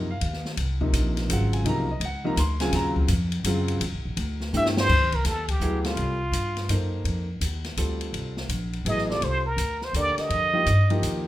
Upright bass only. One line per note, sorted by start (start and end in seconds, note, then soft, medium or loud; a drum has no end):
0.00 0.20 F#2 medium
0.21 0.57 D#2 medium
0.57 0.92 C2 medium
0.93 1.28 A#1 medium
1.29 1.64 G#1 medium
1.64 1.99 C2 medium
2.00 2.35 C#2 medium
2.36 2.71 D2 medium
2.72 3.07 D#2 medium
3.08 3.43 F2 loud
3.44 3.79 F#2 loud
3.80 3.94 E2 medium
3.92 4.05 C2 medium
4.05 4.16 A#1 medium
4.17 4.52 D2 loud
4.53 4.88 G2 medium
4.89 5.01 F2 medium
5.01 5.11 D#2 medium
5.12 5.24 C2 medium
5.24 5.59 D#2 medium
5.60 5.95 D2 medium
5.96 6.31 C2 medium
6.32 6.67 G2 medium
6.69 7.04 F#2 medium
7.04 7.40 F2 medium
7.41 7.76 D#2 medium
7.77 8.12 D2 medium
8.13 8.48 C2 medium
8.49 8.84 A#1 medium
8.85 9.20 A1 medium
9.21 9.56 C2 medium
9.56 9.92 D2 medium
9.93 10.16 D#2 medium
10.17 muted upright bass stroke soft
10.29 10.65 F2 medium
10.66 11.01 G2 medium
11.02 11.27 D#2 medium